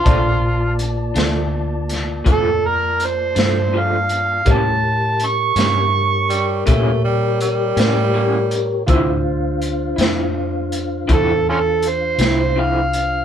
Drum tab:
HH |x-xx-xx-xx-x|x-xx-xx-xx-x|x-xx-xx-xx-x|
SD |---o-o---o--|---o-----o--|---o-----o--|
BD |o-----o-----|o-----o-----|o-----o-----|